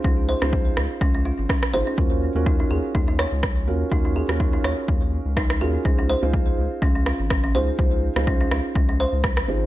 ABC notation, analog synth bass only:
X:1
M:4/4
L:1/16
Q:"Swing 16ths" 1/4=124
K:Db
V:1 name="Analog synth bass" clef=bass
D,,2 z D,,2 z D,, z D,,2 z A,,, z2 A,,, z | E,,2 z E,,2 z E,, z E,,2 z D,,3 E,, z | E,,2 z E,,2 z E,, z E,,2 z D,,3 E,, z | D,,2 z D,,2 z D,, z D,,2 z A,,,3 D,, z |
D,,2 z D,,2 z D,, z D,,2 z D,,2 z A,,, z |]